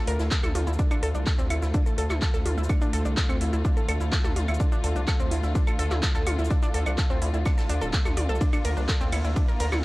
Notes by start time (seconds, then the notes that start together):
Already playing: D3 A3 F4
0.07 D2 A#4, closed hi-hat, open hi-hat
0.19 D2 E4, snare, closed hi-hat, shaker
0.31 A4, kick, clap, shaker
0.43 D2 A4, closed hi-hat, mid tom, claves, shaker
0.55 D2 F4, closed hi-hat, open hi-hat, mid tom, shaker
0.67 D2 E4, shaker
0.73 shaker
0.79 D3 D4 F4, kick, closed hi-hat, shaker
0.91 D4, claves, shaker
1.03 D2 A4, closed hi-hat, open hi-hat, shaker
1.15 C2 D4, shaker
1.27 A4, kick, snare, clap, closed hi-hat, shaker
1.39 D2 C4, shaker
1.50 D2 E4, closed hi-hat, open hi-hat, claves, shaker
1.62 D2 E4, snare, shaker
1.74 D4, kick, closed hi-hat, shaker
1.86 A4, shaker
1.98 D2 A4, closed hi-hat, open hi-hat
2.10 D2 E4, clap, mid tom, claves, shaker
2.21 A4, kick, snare, clap, closed hi-hat, shaker
2.34 D2 A4, closed hi-hat, shaker
2.45 D2 F4, closed hi-hat, open hi-hat, mid tom, shaker
2.58 D2 E4, shaker
2.64 shaker
2.69 D4, kick, closed hi-hat, claves, shaker
2.81 D4, shaker
2.93 D2 A4, closed hi-hat, open hi-hat, shaker
3.05 C2 D4, shaker
3.17 A4, kick, snare, clap, closed hi-hat, shaker
3.29 D2 C4, claves, shaker
3.41 D2 E4, closed hi-hat, open hi-hat, shaker
3.53 D2 E4, shaker
3.65 D4, kick, closed hi-hat, shaker
3.77 A4, shaker
3.88 D2 A4, closed hi-hat, open hi-hat, claves
4.01 D2 E4, shaker
4.12 A4, kick, snare, clap, closed hi-hat, shaker
4.24 D2 A4, snare, mid tom, shaker
4.36 D2 F4, closed hi-hat, open hi-hat, mid tom, shaker
4.48 D2 E4, claves, shaker
4.54 shaker
4.60 D4, kick, closed hi-hat, shaker
4.72 D4, shaker
4.84 D2 A4, closed hi-hat, open hi-hat, shaker
4.96 C2 D4, shaker
5.07 A4, kick, snare, clap, closed hi-hat, claves, shaker
5.20 D2 C4, shaker
5.31 D2 E4, closed hi-hat, open hi-hat, shaker
5.43 D2 E4, snare, shaker
5.55 D4, kick, closed hi-hat, shaker
5.67 A4, claves, shaker
5.79 D2 A4, closed hi-hat, open hi-hat
5.91 D2 E4, clap, mid tom, shaker
6.03 A4, kick, snare, clap, closed hi-hat, shaker
6.15 D2 A4, closed hi-hat, shaker
6.27 D2 F4, closed hi-hat, open hi-hat, mid tom, claves, shaker
6.39 D2 E4, shaker
6.45 shaker
6.50 D4, kick, closed hi-hat, shaker
6.62 D4, shaker
6.74 D2 A4, closed hi-hat, open hi-hat, shaker
6.86 C2 D4, claves, shaker
6.98 A4, kick, snare, clap, closed hi-hat, shaker
7.10 D2 C4, shaker
7.22 D2 E4, closed hi-hat, open hi-hat, shaker
7.34 D2 E4, shaker
7.45 D4, kick, snare, closed hi-hat, claves, shaker
7.58 A4, snare, closed hi-hat, shaker
7.69 D2 D4, closed hi-hat, open hi-hat, shaker
7.81 D1 A4, shaker
7.93 A3, kick, snare, clap, closed hi-hat, shaker
8.05 D2 A3, snare, mid tom, claves, shaker
8.17 D2 D5, closed hi-hat, open hi-hat, mid tom, shaker
8.29 C2 A4, shaker
8.35 shaker
8.41 A#3 D4, kick, closed hi-hat, ride, shaker
8.53 D4, claves, shaker
8.65 D2 A#4, closed hi-hat, open hi-hat, ride, shaker
8.77 C2 D4, shaker
8.89 A4, kick, snare, clap, closed hi-hat, ride, shaker
9.01 D2 C4, shaker
9.12 D2 E4, closed hi-hat, open hi-hat, ride, claves, shaker
9.24 D2 E4, snare, shaker
9.36 D4, kick, closed hi-hat, ride, shaker
9.48 A#4, shaker
9.59 D2 A#4, closed hi-hat, open hi-hat, ride
9.72 D2 E4, clap, mid tom, claves, shaker